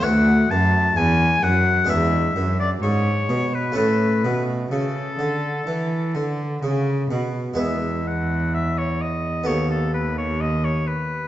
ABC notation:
X:1
M:4/4
L:1/16
Q:1/4=64
K:A
V:1 name="Oboe"
f2 a2 g2 f2 e3 d c3 B | B3 z A8 z4 | [K:E] e2 f2 e c d2 c A B c d c B2 |]
V:2 name="Harpsichord"
[A,FB]8 [G,DB]8 | [A,CA]16 | [K:E] [G,B,B]8 [B,A]8 |]
V:3 name="Harpsichord" clef=bass
D,,2 F,,2 E,,2 F,,2 E,,2 F,,2 G,,2 B,,2 | A,,2 B,,2 C,2 D,2 E,2 D,2 C,2 B,,2 | [K:E] E,,8 D,,8 |]
V:4 name="Cello" clef=bass
D,,2 F,,2 E,,2 F,,2 E,,2 F,,2 G,,2 B,,2 | A,,2 B,,2 C,2 D,2 E,2 D,2 C,2 B,,2 | [K:E] E,,8 D,,8 |]